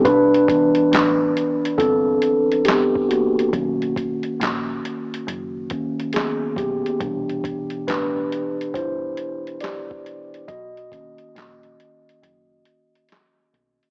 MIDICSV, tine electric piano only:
0, 0, Header, 1, 2, 480
1, 0, Start_track
1, 0, Tempo, 869565
1, 28, Time_signature, 4, 2, 24, 8
1, 7673, End_track
2, 0, Start_track
2, 0, Title_t, "Tine electric piano"
2, 0, Program_c, 0, 4
2, 0, Control_c, 0, 64, 127
2, 27, Note_on_c, 0, 71, 110
2, 36, Control_c, 0, 64, 0
2, 43, Note_on_c, 0, 62, 87
2, 118, Control_c, 0, 64, 127
2, 275, Note_off_c, 0, 62, 0
2, 275, Note_on_c, 0, 52, 50
2, 278, Note_on_c, 0, 59, 44
2, 282, Note_on_c, 0, 62, 54
2, 965, Note_off_c, 0, 71, 0
2, 970, Note_off_c, 0, 52, 0
2, 971, Note_off_c, 0, 59, 0
2, 973, Note_off_c, 0, 62, 0
2, 983, Note_on_c, 0, 69, 101
2, 1001, Note_on_c, 0, 60, 65
2, 1453, Note_off_c, 0, 60, 0
2, 1462, Note_on_c, 0, 67, 84
2, 1480, Note_off_c, 0, 69, 0
2, 1483, Note_on_c, 0, 59, 68
2, 1699, Note_off_c, 0, 59, 0
2, 1705, Note_on_c, 0, 66, 74
2, 1712, Note_off_c, 0, 67, 0
2, 1723, Note_on_c, 0, 58, 59
2, 1953, Note_off_c, 0, 58, 0
2, 1955, Control_c, 0, 64, 0
2, 1957, Note_on_c, 0, 51, 54
2, 1960, Note_on_c, 0, 58, 50
2, 1963, Note_on_c, 0, 61, 64
2, 2049, Control_c, 0, 64, 127
2, 2651, Note_off_c, 0, 51, 0
2, 2652, Note_off_c, 0, 58, 0
2, 2653, Note_off_c, 0, 61, 0
2, 3124, Note_off_c, 0, 66, 0
2, 3156, Note_on_c, 0, 51, 47
2, 3158, Note_on_c, 0, 58, 45
2, 3160, Note_on_c, 0, 61, 58
2, 3370, Note_off_c, 0, 51, 0
2, 3371, Note_off_c, 0, 58, 0
2, 3372, Note_off_c, 0, 61, 0
2, 3389, Note_on_c, 0, 68, 76
2, 3402, Note_on_c, 0, 59, 54
2, 3619, Note_off_c, 0, 59, 0
2, 3631, Note_on_c, 0, 67, 80
2, 3636, Note_off_c, 0, 68, 0
2, 3644, Note_on_c, 0, 59, 57
2, 3873, Note_on_c, 0, 52, 56
2, 3875, Control_c, 0, 64, 0
2, 3876, Note_on_c, 0, 47, 54
2, 3880, Note_on_c, 0, 62, 63
2, 3957, Control_c, 0, 64, 127
2, 4334, Note_off_c, 0, 59, 0
2, 4348, Note_on_c, 0, 71, 91
2, 4354, Note_off_c, 0, 62, 0
2, 4361, Note_on_c, 0, 62, 74
2, 4371, Note_off_c, 0, 67, 0
2, 4812, Note_off_c, 0, 62, 0
2, 4826, Note_on_c, 0, 72, 90
2, 4840, Note_on_c, 0, 64, 72
2, 4842, Note_off_c, 0, 71, 0
2, 5292, Note_off_c, 0, 64, 0
2, 5305, Note_on_c, 0, 74, 92
2, 5317, Note_on_c, 0, 67, 76
2, 5322, Note_off_c, 0, 72, 0
2, 5768, Note_off_c, 0, 52, 0
2, 5770, Note_off_c, 0, 47, 0
2, 5770, Note_off_c, 0, 67, 0
2, 5787, Note_on_c, 0, 75, 103
2, 5795, Control_c, 0, 64, 0
2, 5798, Note_on_c, 0, 66, 73
2, 5801, Note_off_c, 0, 74, 0
2, 5907, Control_c, 0, 64, 127
2, 6033, Note_on_c, 0, 51, 49
2, 6035, Note_on_c, 0, 58, 43
2, 6038, Note_on_c, 0, 61, 56
2, 6728, Note_off_c, 0, 51, 0
2, 6730, Note_off_c, 0, 58, 0
2, 6731, Note_off_c, 0, 61, 0
2, 7206, Note_off_c, 0, 75, 0
2, 7211, Note_off_c, 0, 66, 0
2, 7673, End_track
0, 0, End_of_file